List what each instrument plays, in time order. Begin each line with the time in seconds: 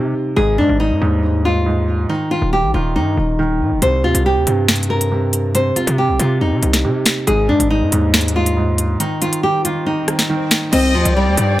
Already playing: 808-style bass C3, felt piano C3, nylon-string guitar D#4
0.36 808-style bass G#1, felt piano G#2, nylon-string guitar G#4
0.58 808-style bass G#2, felt piano G#2, nylon-string guitar D4
0.69 808-style bass G#1
0.80 felt piano G#2, nylon-string guitar D#4
0.91 808-style bass G#2
1.02 808-style bass D#2, felt piano G#2
1.23 felt piano G#2
1.45 felt piano G#2, nylon-string guitar F4
1.66 felt piano G#2
2.09 felt piano D#3, nylon-string guitar D#4
2.31 felt piano D#3, nylon-string guitar F4
2.42 808-style bass D#1
2.53 felt piano D#3, nylon-string guitar G4
2.63 808-style bass A#1
2.74 808-style bass D#1, felt piano D#3, nylon-string guitar F4
2.95 808-style bass G2, felt piano D#3, nylon-string guitar D#4
3.17 808-style bass D#1, felt piano D#3
3.39 felt piano D#3
3.60 808-style bass A#2
3.71 808-style bass D#1
3.82 808-style bass C2, felt piano C3, nylon-string guitar C5, closed hi-hat
4.03 808-style bass D#2, felt piano C3, nylon-string guitar F4
4.14 808-style bass C2, closed hi-hat
4.25 felt piano C3, nylon-string guitar G4
4.36 808-style bass D#2
4.47 808-style bass G2, felt piano C3, closed hi-hat
4.68 felt piano C3, finger snap, snare, closed hi-hat
4.76 closed hi-hat
4.83 closed hi-hat
4.90 felt piano C3, nylon-string guitar A#4
5.01 closed hi-hat
5.12 felt piano C3
5.33 closed hi-hat
5.55 felt piano C3, nylon-string guitar C5, closed hi-hat
5.76 felt piano C3, nylon-string guitar F4, closed hi-hat
5.87 808-style bass C3, closed hi-hat
5.98 felt piano C3, nylon-string guitar G4
6.09 808-style bass A#1
6.19 808-style bass C3, felt piano C3, nylon-string guitar F4, closed hi-hat
6.41 808-style bass D#2, felt piano C3, nylon-string guitar D#4
6.52 808-style bass C3
6.62 808-style bass C2, felt piano C3, closed hi-hat
6.73 snare, closed hi-hat
6.84 808-style bass C3, felt piano C3
7.06 finger snap, snare, closed hi-hat
7.27 808-style bass G#1, felt piano G#2, nylon-string guitar G#4, closed hi-hat, swell
7.49 808-style bass G#2, felt piano G#2, nylon-string guitar D4
7.60 808-style bass G#1, closed hi-hat
7.70 felt piano G#2, nylon-string guitar D#4
7.81 808-style bass G#2
7.92 808-style bass D#2, felt piano G#2, closed hi-hat
8.14 felt piano G#2, finger snap, snare, closed hi-hat
8.21 closed hi-hat
8.28 closed hi-hat
8.36 felt piano G#2, nylon-string guitar F4
8.46 closed hi-hat
8.57 felt piano G#2
8.78 closed hi-hat
9.00 felt piano D#3, nylon-string guitar D#4, closed hi-hat
9.22 felt piano D#3, nylon-string guitar F4, closed hi-hat
9.33 closed hi-hat
9.43 felt piano D#3, nylon-string guitar G4
9.65 felt piano D#3, nylon-string guitar F4, closed hi-hat
9.86 felt piano D#3, nylon-string guitar D#4
10.08 felt piano D#3, cross-stick, closed hi-hat
10.19 snare, closed hi-hat
10.30 felt piano D#3
10.51 finger snap, snare, closed hi-hat
10.73 808-style bass C2, nylon-string guitar C4, flute section D#4 G4 C5 G5, violin section D#5, closed hi-hat, crash
10.94 808-style bass D#2, nylon-string guitar F3
11.05 808-style bass C2, closed hi-hat
11.16 nylon-string guitar G3, violin section D5
11.27 808-style bass D#2
11.37 808-style bass G2, closed hi-hat